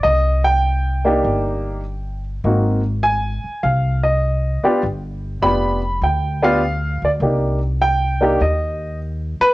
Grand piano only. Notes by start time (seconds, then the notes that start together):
0.03 D#5
0.44 G5
1.05 A#3 D4 D#4 G4
2.45 A#3 C4 D#4 F#4
3.03 G#5
3.63 F5
4.03 D#5
4.63 B3 D4 F4 G4 D5
5.42 B3 D4 F4 G4 B5
6.04 G5
6.42 B3 D4 F4 G4 F5
7.05 D5
7.22 A#3 D4 D#4 G4
7.82 G5
8.21 A#3 D4 D#4 G4
8.42 D#5
9.41 B4